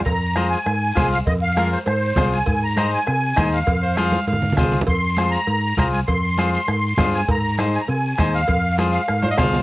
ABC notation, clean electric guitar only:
X:1
M:4/4
L:1/8
Q:1/4=199
K:Fm
V:1 name="Clean electric guitar"
z2 [FAc] z3 [FAc] z | z2 [FAB] z3 [FAc] z | z2 [EAc] z3 [EAc] z | z2 [FAc] z3 [FAc] z |
z2 [FAc] z3 [FAc] z | z2 [FAc] z3 [FAc] z | z2 [EAc] z3 [EAc] z | z2 [FAc] z3 [FAc] z |]